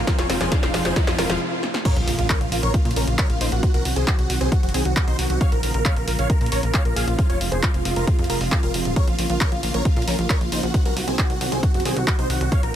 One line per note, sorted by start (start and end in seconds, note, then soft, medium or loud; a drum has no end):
0.00 riser medium
0.07 0.23 C3 medium
0.07 0.13 F3 loud
0.07 0.23 F3 medium
0.07 0.23 G#3 medium
0.07 0.17 F4 medium
0.07 0.23 F4 medium
0.07 kick loud
0.07 snare loud
0.07 closed hi-hat loud
0.18 0.26 F1 medium
0.18 0.24 F3 loud
0.18 0.28 F4 medium
0.18 0.28 C#5 medium
0.18 snare loud
0.18 closed hi-hat medium
0.29 0.37 F1 loud
0.29 0.38 C3 medium
0.29 0.38 F3 medium
0.29 0.38 G#3 medium
0.29 0.33 C4 medium
0.29 0.38 F4 medium
0.29 0.39 F4 medium
0.29 snare loud
0.29 open hi-hat loud
0.41 0.49 F1 medium
0.41 0.56 C3 medium
0.41 0.47 F3 loud
0.41 0.56 F3 medium
0.41 0.56 G#3 medium
0.41 0.56 F4 medium
0.41 0.50 G#4 medium
0.41 0.50 C5 loud
0.41 snare medium
0.41 closed hi-hat medium
0.52 0.61 F4 medium
0.52 0.58 F4 loud
0.52 kick loud
0.52 snare loud
0.52 closed hi-hat loud
0.63 0.71 F1 medium
0.63 0.71 C3 medium
0.63 0.71 F3 medium
0.63 0.71 G#3 medium
0.63 0.67 C4 medium
0.63 0.72 F4 medium
0.63 0.71 F4 medium
0.63 snare medium
0.63 closed hi-hat medium
0.74 0.82 F1 loud
0.74 0.90 C3 medium
0.74 0.80 F3 medium
0.74 0.90 F3 medium
0.74 0.90 G#3 medium
0.74 0.83 F4 medium
0.74 0.90 F4 medium
0.74 snare loud
0.74 open hi-hat medium
0.85 0.93 F1 medium
0.85 0.94 F3 medium
0.85 0.94 G#4 medium
0.85 0.94 C5 loud
0.85 snare medium
0.85 closed hi-hat medium
0.96 1.02 F2 loud
0.96 1.12 C3 medium
0.96 1.12 F3 medium
0.96 1.12 G#3 medium
0.96 1.12 F4 medium
0.96 1.06 F4 medium
0.96 kick loud
0.96 snare loud
0.96 closed hi-hat loud
1.07 1.15 F2 medium
1.07 1.13 F3 loud
1.07 1.17 F4 medium
1.07 snare medium
1.07 closed hi-hat medium
1.18 1.26 F1 loud
1.18 1.26 C3 medium
1.18 1.27 F3 medium
1.18 1.26 F3 medium
1.18 1.26 G#3 medium
1.18 1.26 F4 medium
1.18 1.28 F4 medium
1.18 1.28 A#4 loud
1.18 snare loud
1.18 open hi-hat loud
1.29 1.37 F1 medium
1.29 1.38 C3 medium
1.29 1.35 F3 loud
1.29 1.37 F3 medium
1.29 1.37 G#3 medium
1.29 1.38 F4 medium
1.29 1.39 F4 medium
1.29 snare medium
1.29 closed hi-hat medium
1.63 snare medium
1.74 snare medium
1.85 2.01 C#3 medium
1.85 2.01 F3 medium
1.85 2.01 A#3 medium
1.85 2.01 F4 medium
1.85 1.95 A#4 medium
1.85 1.95 C#5 loud
1.85 kick loud
1.85 closed hi-hat medium
1.85 crash loud
1.85 impact medium
1.96 2.04 A#1 medium
1.96 2.06 F4 medium
1.96 closed hi-hat medium
2.07 2.15 A#1 loud
2.07 2.15 C#3 medium
2.07 2.15 F3 medium
2.07 2.15 A#3 medium
2.07 2.15 F4 medium
2.07 2.17 F4 medium
2.07 open hi-hat loud
2.18 2.26 A#1 medium
2.18 2.34 C#3 medium
2.18 2.34 F3 medium
2.18 2.34 A#3 medium
2.18 2.28 F4 medium
2.18 2.34 F4 medium
2.18 closed hi-hat medium
2.30 2.39 A#4 medium
2.30 2.39 C#5 medium
2.30 kick loud
2.30 clap loud
2.30 closed hi-hat medium
2.41 2.48 A#1 medium
2.41 2.49 C#3 medium
2.41 2.49 F3 medium
2.41 2.49 A#3 medium
2.41 2.50 F4 medium
2.41 2.49 F4 medium
2.41 closed hi-hat medium
2.52 2.60 A#1 loud
2.52 2.68 C#3 medium
2.52 2.68 F3 medium
2.52 2.68 A#3 medium
2.52 2.68 F4 medium
2.52 2.61 F4 medium
2.52 open hi-hat loud
2.63 2.71 A#1 loud
2.63 2.72 A#4 medium
2.63 2.72 C#5 medium
2.63 closed hi-hat medium
2.74 2.90 C#3 medium
2.74 2.90 F3 medium
2.74 2.90 A#3 loud
2.74 2.83 F4 medium
2.74 2.90 F4 medium
2.74 kick loud
2.74 closed hi-hat medium
2.85 2.93 A#2 medium
2.85 2.95 F4 medium
2.85 closed hi-hat medium
2.91 closed hi-hat medium
2.96 3.04 A#1 loud
2.96 3.04 C#3 medium
2.96 3.04 F3 medium
2.96 3.04 A#3 medium
2.96 3.06 C#4 medium
2.96 3.04 F4 medium
2.96 3.06 A#4 medium
2.96 open hi-hat loud
3.07 3.15 A#1 medium
3.07 3.23 C#3 medium
3.07 3.23 F3 medium
3.07 3.23 A#3 medium
3.07 3.23 F4 medium
3.07 3.17 F4 medium
3.07 closed hi-hat medium
3.19 3.28 A#4 medium
3.19 3.28 C#5 medium
3.19 kick loud
3.19 clap loud
3.19 closed hi-hat medium
3.30 3.37 A#1 medium
3.30 3.37 C#3 loud
3.30 3.38 F3 loud
3.30 3.37 A#3 medium
3.30 3.38 F4 medium
3.30 3.39 F4 medium
3.30 closed hi-hat medium
3.41 3.49 A#1 loud
3.41 3.57 C#3 medium
3.41 3.56 F3 medium
3.41 3.56 A#3 medium
3.41 3.50 D#4 medium
3.41 3.56 F4 medium
3.41 3.50 C5 medium
3.41 open hi-hat loud
3.52 3.60 A#1 medium
3.52 3.61 F#4 medium
3.52 closed hi-hat medium
3.63 3.79 D#3 medium
3.63 3.79 F#3 medium
3.63 3.79 C4 loud
3.63 3.72 F#4 medium
3.63 3.79 F#4 medium
3.63 kick loud
3.63 closed hi-hat medium
3.74 3.82 C2 medium
3.74 3.83 F#4 medium
3.74 3.83 A#4 medium
3.74 closed hi-hat medium
3.85 3.93 C2 loud
3.85 3.93 D#3 medium
3.85 3.93 F#3 medium
3.85 3.93 C4 medium
3.85 3.94 F#4 medium
3.85 3.93 F#4 medium
3.85 open hi-hat loud
3.96 4.04 C2 loud
3.96 4.12 D#3 medium
3.96 4.12 F#3 medium
3.96 4.05 C4 medium
3.96 4.12 C4 medium
3.96 4.12 F#4 medium
3.96 4.05 G#4 loud
3.96 closed hi-hat medium
4.07 4.17 F#4 medium
4.07 kick loud
4.07 clap loud
4.07 closed hi-hat medium
4.18 4.26 C2 medium
4.18 4.27 D#3 medium
4.18 4.27 F#3 medium
4.18 4.27 C4 medium
4.18 4.28 F#4 medium
4.18 4.27 F#4 medium
4.18 closed hi-hat medium
4.30 4.38 C2 medium
4.30 4.46 D#3 loud
4.30 4.45 F#3 medium
4.30 4.46 C4 medium
4.30 4.39 F#4 medium
4.30 4.45 F#4 medium
4.30 open hi-hat loud
4.41 4.49 C2 medium
4.41 4.50 C4 medium
4.41 4.50 G#4 medium
4.41 closed hi-hat medium
4.52 4.68 D#3 medium
4.52 4.68 F#3 medium
4.52 4.68 C4 medium
4.52 4.61 F#4 medium
4.52 4.68 F#4 medium
4.52 kick loud
4.52 closed hi-hat medium
4.63 4.71 F#1 medium
4.63 4.72 F#4 medium
4.63 closed hi-hat soft
4.69 closed hi-hat medium
4.74 4.82 C2 loud
4.74 4.82 D#3 medium
4.74 4.82 F#3 medium
4.74 4.83 C4 medium
4.74 4.82 C4 medium
4.74 4.82 F#4 medium
4.74 4.83 G#4 medium
4.74 open hi-hat loud
4.85 4.93 C2 loud
4.85 5.01 D#3 medium
4.85 5.01 F#3 medium
4.85 5.01 C4 medium
4.85 4.94 F#4 medium
4.85 5.01 F#4 medium
4.85 closed hi-hat medium
4.96 kick loud
4.96 clap loud
4.96 closed hi-hat medium
5.07 5.15 C2 medium
5.07 5.16 D#3 medium
5.07 5.16 F#3 medium
5.07 5.16 C4 medium
5.07 5.17 D#4 medium
5.07 5.16 F#4 medium
5.07 5.17 C5 loud
5.07 closed hi-hat medium
5.19 5.27 C2 loud
5.19 5.35 D#3 medium
5.19 5.35 F#3 medium
5.19 5.35 C4 medium
5.19 5.28 F#4 medium
5.19 5.35 F#4 medium
5.19 open hi-hat loud
5.30 5.38 C2 medium
5.30 5.39 F#4 medium
5.30 closed hi-hat medium
5.41 5.57 C#3 medium
5.41 5.57 F3 medium
5.41 5.57 A#3 medium
5.41 5.57 F4 medium
5.41 5.50 C#5 medium
5.41 5.50 F5 medium
5.41 kick loud
5.41 closed hi-hat medium
5.52 5.60 A#1 medium
5.52 5.61 A#4 medium
5.52 closed hi-hat medium
5.63 5.71 A#1 loud
5.63 5.71 C#3 medium
5.63 5.71 F3 medium
5.63 5.71 A#3 medium
5.63 5.71 F4 medium
5.63 5.72 A#4 medium
5.63 open hi-hat loud
5.74 5.82 A#1 loud
5.74 5.90 C#3 medium
5.74 5.90 F3 medium
5.74 5.90 A#3 medium
5.74 5.90 F4 medium
5.74 5.83 A#4 medium
5.74 closed hi-hat medium
5.85 5.95 C#5 medium
5.85 5.95 F5 medium
5.85 kick loud
5.85 clap loud
5.85 closed hi-hat medium
5.97 6.04 A#1 medium
5.97 6.05 C#3 medium
5.97 6.05 F3 medium
5.97 6.05 A#3 medium
5.97 6.05 F4 medium
5.97 6.06 A#4 medium
5.97 closed hi-hat medium
6.08 6.15 A#1 loud
6.08 6.23 C#3 medium
6.08 6.23 F3 medium
6.08 6.23 A#3 medium
6.08 6.23 F4 medium
6.08 6.17 A#4 medium
6.08 open hi-hat loud
6.19 6.27 A#1 medium
6.19 6.28 C#5 medium
6.19 6.28 F5 loud
6.19 closed hi-hat medium
6.30 6.46 C#3 medium
6.30 6.45 F3 medium
6.30 6.46 A#3 medium
6.30 6.46 F4 medium
6.30 6.39 A#4 medium
6.30 kick loud
6.30 closed hi-hat medium
6.41 6.49 A#2 medium
6.41 6.50 A#4 medium
6.41 closed hi-hat soft
6.46 closed hi-hat medium
6.52 6.60 A#1 loud
6.52 6.60 C#3 medium
6.52 6.60 F3 medium
6.52 6.60 A#3 medium
6.52 6.60 F4 medium
6.52 6.61 A#4 medium
6.52 6.61 C#5 medium
6.52 open hi-hat loud
6.63 6.71 A#1 loud
6.63 6.79 C#3 medium
6.63 6.79 F3 medium
6.63 6.79 A#3 medium
6.63 6.79 F4 medium
6.63 6.72 A#4 medium
6.63 closed hi-hat medium
6.74 6.83 C#5 medium
6.74 6.83 F5 medium
6.74 kick loud
6.74 clap loud
6.74 closed hi-hat medium
6.85 6.93 A#1 medium
6.85 6.93 C#3 loud
6.85 6.93 F3 medium
6.85 6.93 A#3 loud
6.85 6.93 F4 medium
6.85 6.94 A#4 medium
6.85 closed hi-hat medium
6.96 7.04 A#1 loud
6.96 7.12 C#3 medium
6.96 7.12 F3 medium
6.96 7.12 A#3 medium
6.96 7.12 F4 medium
6.96 7.05 G#4 medium
6.96 7.05 F5 medium
6.96 open hi-hat loud
7.07 7.15 A#1 loud
7.07 7.17 F4 medium
7.07 closed hi-hat soft
7.18 7.34 C3 medium
7.18 7.34 F3 medium
7.18 7.34 G#3 medium
7.18 7.28 F4 medium
7.18 7.34 F4 medium
7.18 kick loud
7.18 closed hi-hat medium
7.29 7.38 F1 medium
7.29 7.39 F4 medium
7.29 7.39 C#5 medium
7.29 closed hi-hat medium
7.40 7.49 F1 loud
7.40 7.49 C3 medium
7.40 7.49 F3 medium
7.40 7.49 G#3 medium
7.40 7.50 F4 medium
7.40 7.49 F4 medium
7.40 open hi-hat loud
7.52 7.60 F1 loud
7.52 7.68 C3 loud
7.52 7.68 F3 medium
7.52 7.68 G#3 medium
7.52 7.68 F4 medium
7.52 7.61 G#4 medium
7.52 7.61 C5 loud
7.52 closed hi-hat medium
7.63 7.72 F4 medium
7.63 kick loud
7.63 clap loud
7.63 closed hi-hat medium
7.74 7.82 F1 medium
7.74 7.82 C3 medium
7.74 7.82 F3 medium
7.74 7.82 G#3 medium
7.74 7.83 F4 medium
7.74 7.82 F4 medium
7.74 closed hi-hat medium
7.85 7.93 F1 loud
7.85 8.01 C3 medium
7.85 8.01 F3 loud
7.85 8.01 G#3 medium
7.85 7.94 F4 medium
7.85 8.01 F4 medium
7.85 open hi-hat loud
7.96 8.04 F1 medium
7.96 8.06 F4 medium
7.96 8.06 A#4 loud
7.96 closed hi-hat medium
8.07 8.23 C3 medium
8.07 8.23 F3 medium
8.07 8.23 G#3 medium
8.07 8.23 F4 medium
8.07 8.17 F4 medium
8.07 kick loud
8.07 closed hi-hat medium
8.19 8.26 F2 medium
8.19 8.28 F4 medium
8.19 closed hi-hat soft
8.24 closed hi-hat medium
8.30 8.37 F1 loud
8.30 8.37 C3 medium
8.30 8.37 F3 medium
8.30 8.37 G#3 medium
8.30 8.37 F4 medium
8.30 8.39 F4 medium
8.30 8.39 A#4 loud
8.30 open hi-hat loud
8.41 8.49 F1 medium
8.41 8.56 C3 medium
8.41 8.56 F3 medium
8.41 8.56 G#3 medium
8.41 8.56 F4 medium
8.41 8.50 F4 medium
8.41 open hi-hat medium
8.52 8.61 F4 medium
8.52 kick loud
8.52 clap loud
8.52 closed hi-hat medium
8.63 8.71 F1 medium
8.63 8.71 C3 medium
8.63 8.71 F3 medium
8.63 8.71 G#3 medium
8.63 8.72 F4 medium
8.63 8.71 F4 loud
8.63 8.72 A#4 loud
8.63 closed hi-hat soft
8.74 8.82 F1 loud
8.74 8.90 C3 medium
8.74 8.90 F3 medium
8.74 8.90 G#3 medium
8.74 8.83 F4 medium
8.74 8.90 F4 medium
8.74 open hi-hat loud
8.85 8.93 D#1 medium
8.85 8.94 F4 medium
8.85 closed hi-hat soft
8.96 9.12 C#3 medium
8.96 9.12 F3 medium
8.96 9.12 A#3 medium
8.96 9.12 F4 medium
8.96 9.05 A#4 medium
8.96 9.05 C#5 medium
8.96 kick loud
8.96 closed hi-hat medium
9.07 9.15 A#1 medium
9.07 9.17 F4 medium
9.07 closed hi-hat medium
9.19 9.26 A#1 loud
9.19 9.27 C#3 loud
9.19 9.27 F3 medium
9.19 9.27 A#3 loud
9.19 9.28 F4 medium
9.19 9.27 F4 loud
9.19 open hi-hat loud
9.30 9.38 A#1 loud
9.30 9.45 C#3 loud
9.30 9.45 F3 loud
9.30 9.45 A#3 medium
9.30 9.39 F4 medium
9.30 9.45 F4 loud
9.30 closed hi-hat medium
9.41 9.50 A#4 medium
9.41 9.50 C#5 medium
9.41 kick loud
9.41 clap loud
9.41 closed hi-hat medium
9.52 9.60 A#1 medium
9.52 9.60 C#3 medium
9.52 9.60 F3 medium
9.52 9.60 A#3 medium
9.52 9.61 F4 medium
9.52 9.60 F4 medium
9.52 closed hi-hat medium
9.63 9.71 A#1 loud
9.63 9.79 C#3 medium
9.63 9.79 F3 medium
9.63 9.79 A#3 medium
9.63 9.72 F4 medium
9.63 9.79 F4 medium
9.63 open hi-hat loud
9.74 9.82 A#1 medium
9.74 9.83 A#4 medium
9.74 9.83 C#5 loud
9.74 closed hi-hat medium
9.85 10.01 C#3 medium
9.85 10.01 F3 medium
9.85 10.01 A#3 medium
9.85 9.94 F4 medium
9.85 10.01 F4 medium
9.85 kick loud
9.85 closed hi-hat medium
9.96 10.04 A#2 medium
9.96 10.06 F4 medium
9.96 closed hi-hat soft
10.02 closed hi-hat medium
10.08 10.15 A#1 loud
10.08 10.15 C#3 medium
10.08 10.15 F3 medium
10.08 10.15 A#3 medium
10.08 10.17 C#4 medium
10.08 10.15 F4 medium
10.08 10.17 A#4 medium
10.08 open hi-hat loud
10.19 10.26 A#1 medium
10.19 10.34 C#3 medium
10.19 10.34 F3 medium
10.19 10.34 A#3 medium
10.19 10.28 F4 medium
10.19 10.34 F4 medium
10.19 closed hi-hat medium
10.30 10.39 A#4 medium
10.30 10.39 C#5 medium
10.30 kick loud
10.30 clap loud
10.30 closed hi-hat medium
10.41 10.49 A#1 medium
10.41 10.49 C#3 medium
10.41 10.49 F3 loud
10.41 10.49 A#3 loud
10.41 10.49 F4 medium
10.41 10.50 F4 medium
10.41 closed hi-hat medium
10.52 10.60 A#1 loud
10.52 10.68 C#3 medium
10.52 10.68 F3 medium
10.52 10.68 A#3 medium
10.52 10.61 D#4 medium
10.52 10.68 F4 medium
10.52 10.61 C5 medium
10.52 open hi-hat loud
10.63 10.71 A#1 loud
10.63 10.72 F#4 medium
10.63 closed hi-hat soft
10.74 10.90 D#3 medium
10.74 10.90 F#3 loud
10.74 10.90 C4 medium
10.74 10.83 F#4 medium
10.74 10.90 F#4 medium
10.74 kick loud
10.74 closed hi-hat medium
10.85 10.93 C2 medium
10.85 10.95 F#4 medium
10.85 10.95 A#4 medium
10.85 closed hi-hat medium
10.96 11.04 C2 loud
10.96 11.04 D#3 medium
10.96 11.04 F#3 medium
10.96 11.04 C4 medium
10.96 11.06 F#4 medium
10.96 11.04 F#4 medium
10.96 open hi-hat medium
11.08 11.15 C2 medium
11.08 11.23 D#3 medium
11.08 11.23 F#3 medium
11.08 11.17 C4 medium
11.08 11.23 C4 medium
11.08 11.23 F#4 medium
11.08 11.17 G#4 medium
11.08 closed hi-hat medium
11.19 11.28 F#4 medium
11.19 kick loud
11.19 clap loud
11.19 closed hi-hat medium
11.30 11.37 C2 medium
11.30 11.38 D#3 medium
11.30 11.38 F#3 medium
11.30 11.38 C4 medium
11.30 11.39 F#4 medium
11.30 11.38 F#4 medium
11.30 closed hi-hat medium
11.41 11.49 C2 loud
11.41 11.57 D#3 loud
11.41 11.57 F#3 medium
11.41 11.57 C4 loud
11.41 11.50 F#4 medium
11.41 11.56 F#4 medium
11.41 open hi-hat loud
11.52 11.60 C2 medium
11.52 11.61 C4 medium
11.52 11.61 G#4 medium
11.52 closed hi-hat medium
11.63 11.79 D#3 medium
11.63 11.79 F#3 medium
11.63 11.79 C4 medium
11.63 11.72 F#4 medium
11.63 11.79 F#4 medium
11.63 kick loud
11.63 closed hi-hat medium
11.74 11.82 F#1 medium
11.74 11.83 F#4 medium
11.74 closed hi-hat soft
11.80 closed hi-hat medium
11.85 11.93 C2 loud
11.85 11.93 D#3 medium
11.85 11.93 F#3 medium
11.85 11.95 C4 medium
11.85 11.93 C4 medium
11.85 11.93 F#4 medium
11.85 11.95 G#4 loud
11.85 open hi-hat loud
11.96 12.04 C2 loud
11.96 12.12 D#3 medium
11.96 12.12 F#3 medium
11.96 12.12 C4 medium
11.96 12.12 F#4 medium
11.96 12.06 F#4 medium
11.96 closed hi-hat medium
12.07 12.17 F#4 medium
12.07 kick loud
12.07 clap loud
12.07 closed hi-hat medium
12.19 12.26 C2 medium
12.19 12.27 D#3 medium
12.19 12.27 F#3 loud
12.19 12.27 C4 loud
12.19 12.28 D#4 medium
12.19 12.27 F#4 loud
12.19 12.28 C5 loud
12.19 closed hi-hat medium
12.30 12.37 C2 loud
12.30 12.45 D#3 medium
12.30 12.45 F#3 medium
12.30 12.45 C4 loud
12.30 12.45 F#4 medium
12.30 12.39 F#4 medium
12.30 open hi-hat loud
12.41 12.49 C2 medium
12.41 12.50 F#4 medium
12.41 closed hi-hat medium
12.52 12.67 C#3 medium
12.52 12.67 F3 medium
12.52 12.67 A#3 medium
12.52 12.67 F4 medium
12.52 12.61 C#5 medium
12.52 12.61 F5 loud
12.52 kick loud
12.52 closed hi-hat medium
12.63 12.71 A#1 medium
12.63 12.72 A#4 medium
12.63 closed hi-hat medium